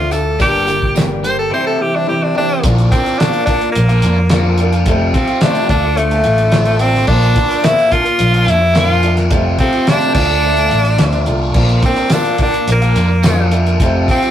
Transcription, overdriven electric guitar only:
Already playing: A3
0.12 D3 A3
0.40 G2 D3 G3
0.67 G2 D3
0.95 G2 D3
1.23 G2 D3
1.50 C3 E3 G3
1.79 C3 E3
2.06 C3 E3
2.35 C3 E3
2.63 A#2 D3 A#3 D4 F4
3.05 A#3 D4 F4
3.20 A#2 D3 A#3 D4 F4
3.47 D3 A#3 D4 F4
3.62 muted overdriven electric guitar stroke
3.88 A#3 D4 F4
4.02 D3 A#3 D4 F4
4.18 muted overdriven electric guitar stroke
4.30 A#2 D3 A#3 D4 F4
4.72 A#3 D4 F4
4.87 F2 C3 F3 A3 C4 F4
5.29 F3 A3 C4 F4
5.41 F2 C3 F3 A3 C4 F4
5.70 D3 A3 D4 F4
5.84 muted overdriven electric guitar stroke
6.12 A3 D4 F4
6.26 D3 A3 D4 F4
6.40 muted overdriven electric guitar stroke
6.53 D3 A3 D4 F4
6.96 A3 D4 F4
7.09 A#2 D3 A#3 D4 F4
7.50 A#3 D4 F4
7.63 A#2 D3 A#3 D4 F4
7.91 D3 A#3 D4 F4
8.04 muted overdriven electric guitar stroke
8.32 A#3 D4 F4
8.46 D3 A#3 D4 F4
8.60 muted overdriven electric guitar stroke
8.73 A#2 D3 A#3 D4 F4
9.15 A#3 D4 F4
9.29 F2 C3 F3 A3 C4 F4
9.72 F3 A3 C4 F4
9.87 F2 C3 F3 A3 C4 F4
10.14 D3 A3 D4 F4
10.29 muted overdriven electric guitar stroke
10.56 A3 D4 F4
10.71 D3 A3 D4 F4
10.85 muted overdriven electric guitar stroke
10.98 D3 A3 D4 F4
11.41 A3 D4 F4
11.54 A#2 D3 A#3 D4 F4
11.97 A#3 D4 F4
12.12 A#2 D3 A#3 D4 F4
12.40 D3 A#3 D4 F4
12.55 muted overdriven electric guitar stroke
12.82 A#3 D4 F4
12.95 D3 A#3 D4 F4
13.09 muted overdriven electric guitar stroke
13.23 A#2 D3 A#3 D4 F4
13.65 A#3 D4 F4
13.80 F2 C3 F3 A3 C4 F4
14.22 F3 A3 C4 F4

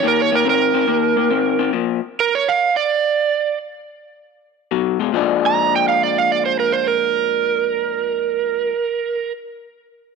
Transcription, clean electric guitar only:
0.03 D#3 A#3
0.32 D#3 A#3
0.45 D#3 C4
0.74 D#3 C4
0.87 D#3 A#3
1.16 D#3 A#3
1.30 D#3 C4
1.59 D#3 C4
1.73 A#2 F3
4.71 B2 F#3
4.99 B2 G#3
5.12 A#2 F3 G#3 D4

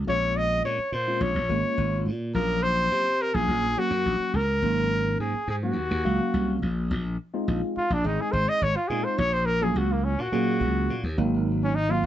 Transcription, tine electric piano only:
0.07 G#3 C4 C#4 F4
1.07 G#3 C4 C#4 F4
1.49 G#3 A#3 C#4 F4
2.35 F#3 A#3 C#4 F4
3.34 F#3 A#3 C#4 F4
3.77 F#3 A#3 C#4 F#4
4.62 F#3 A#3 C#4 D#4
5.63 F#3 A#3 C#4 D#4
6.05 F#3 A#3 C#4 F5
7.34 G#3 C4 D#4 F4
8.04 G#3 C4 D#4 G#4
8.90 G#3 C4 D#4 F4
9.61 F#3 A#3 C#4 F4
10.32 F#3 A#3 C#4 G#4
11.18 F#3 A#3 C4 D#4
11.89 F#3 A#3 C4 F4

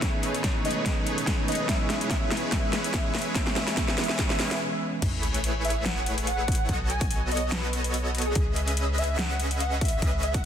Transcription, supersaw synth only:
0.02 A3 D#4 G#4 B4 C#5
0.65 A3 D#4 G#4 B4 C#5
0.86 A3 D#4
1.48 A3 D#4 G#4 B4 C#5
1.69 C#5
2.11 G#3 E4 G#4 C#5
2.52 G#3 E4 G#4
3.35 G#3 E4 G#4 C#5
3.56 G#3 E4 G#4 B4 C#5
3.77 G#3 E4 G#4 C#5
3.98 G#3 E4 G#4 B4 C#5
4.19 G#3 E4 G#4 C#5
4.39 G#3 E4 G#4 B4 C#5
5.02 A3 E4 G#4 B4 C#5
5.64 A3 E4 G#4 B4 C#5
6.69 B3 F#4 A4 C#5 D#5
7.31 B3 F#4 A4 C#5 D#5
8.36 C#4 G#4 B4 D#5 E5
8.98 C#4 G#4 B4 D#5 E5
10.02 C#4 G#4 B4 D#5 E5

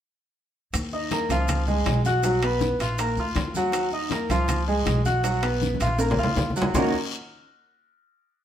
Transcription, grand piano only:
0.93 D#4 D#5 D#6
1.12 A#3 A#4 A#5
1.31 F3 F4 F5
1.68 G#3 G#4 G#5
2.06 F#4 F#5 F#6
2.25 F#3 F#4 F#5
2.43 B3 B4 B5
2.81 F4 F5 F6
3.00 A#3 A#4 A#5
3.19 F4 F5 F6
3.57 F#3 F#4 F#5
3.93 D#4 D#5 D#6
4.12 A#3 A#4 A#5
4.31 F3 F4 F5
4.68 G#3 G#4 G#5
5.06 F#4 F#5 F#6
5.24 F#3 F#4 F#5
5.42 B3 B4 B5
5.82 F4 F5 F6
6.00 A#3 A#4 A#5
6.19 F4 F5 F6
6.56 F#3 F#4 F#5
6.75 D#3 A#3 C#4 D#4 F#4 A#4

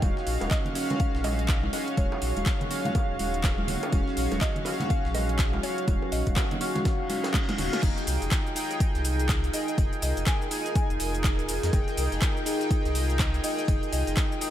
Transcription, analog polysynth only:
0.02 C#4 F#4 F5
0.75 C#4 F#4 F5
1.73 C#4 F#4 F5
1.97 C#4 F#4 F5
2.70 C#4 F#4 F5
3.92 C#4 F#4 F5
4.65 C#4 F#4 F5
5.63 C#4 F#4 F5
5.87 C#4 F#4 F5
6.61 C#4 F#4 F5
7.09 C#4 F#4 F5
7.58 C#4 F#4 F5
7.82 D#4 G#4 G5
8.55 D#4 G#4 G5
9.53 D#4 G#4 G5
9.77 D#4 G#4 G5
10.50 D#4 G#4 G#5
11.72 D#4 G#4 G5
12.46 D#4 G#4 G5
13.43 D#4 G#4 G5
13.67 D#4 G#4 G5
14.41 D#4 G#4 G5

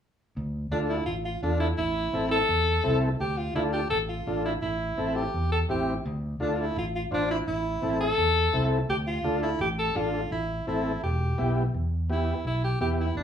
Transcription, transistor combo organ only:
0.72 D4 F4 A4
1.43 D4 F4 A4
2.13 C4 E4 A4
2.84 C4 E4 A4
3.55 D4 F4 A4
4.27 D4 F4 A4
4.98 C4 E4 A4
5.69 C4 E4 G4
6.40 D4 F4 A4
7.11 D4 F4 C5
7.82 C4 E4 A4
8.53 C4 E4 A4
9.24 D4 F4 A4
9.95 D4 F4 A4
10.67 C4 E4 A4
11.38 B3 E4 G4
12.09 B3 E4 G4
12.81 B3 E4 G4

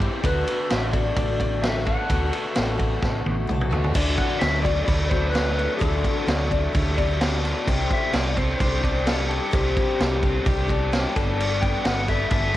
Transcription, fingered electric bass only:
0.24 D2
0.72 A1
1.17 A1
2.10 D2
2.57 A1
3.03 A1
3.26 A1
3.49 B1
3.72 D2
3.96 D2
4.42 D2
4.88 D2
5.82 D2
6.27 D2
6.75 D2
7.68 C2
8.14 C2
8.61 C2
9.53 C2
10.00 C2
10.46 C2
11.17 G1
11.85 G1
12.31 G1

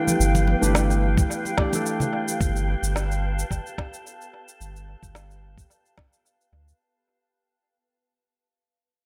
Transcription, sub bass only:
0.20 G1
0.62 G1
2.41 G1
2.83 G1
3.51 G1
4.61 G1
5.03 G1
6.52 D2

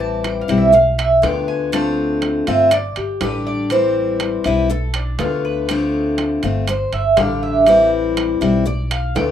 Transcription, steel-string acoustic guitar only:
Already playing: E3 G3 C4 E4
0.48 G3 C4 E4
0.72 muted steel-string acoustic guitar stroke
1.22 D3 A3 B3 F4
1.72 D3 A3 C4 F4
2.47 A3 C4 F4
2.72 muted steel-string acoustic guitar stroke
3.22 D3 G3 D4 G4
3.70 E3 G3 C4 E4
4.45 G3 C4 E4
4.70 muted steel-string acoustic guitar stroke
5.19 D3 A3 B3 F4
5.69 D3 A3 C4 F4
6.43 A3 C4 F4
6.68 muted steel-string acoustic guitar stroke
7.17 D3 G3 D4 G4
7.67 E3 G3 C4 E4
8.41 G3 C4 E4
8.66 muted steel-string acoustic guitar stroke
9.15 D3 A3 B3 F4

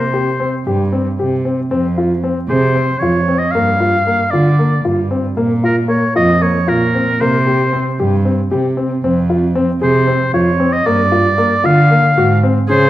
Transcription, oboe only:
Already playing: C5
2.50 C5
2.99 C#5
3.39 D#5
3.51 F5
4.31 D5
5.65 A#4
5.89 C#5
6.16 D#5
6.43 C#5
6.69 A#4
7.21 C5
9.83 C5
10.34 C#5
10.73 D#5
10.87 D5
11.66 F5
12.69 C5

